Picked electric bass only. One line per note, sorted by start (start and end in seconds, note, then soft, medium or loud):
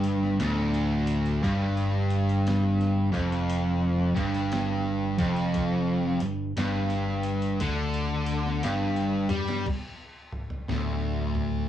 0.00 0.36 G1 loud
0.40 1.39 D1 loud
1.44 3.09 G1 loud
3.14 4.12 F1 loud
4.16 5.15 G1 loud
5.19 6.17 F1 loud
6.22 6.55 G1 medium
6.57 7.56 G1 medium
7.61 8.59 D2 loud
8.64 9.26 G1 loud
9.30 9.64 G2 loud
10.69 11.68 D1 medium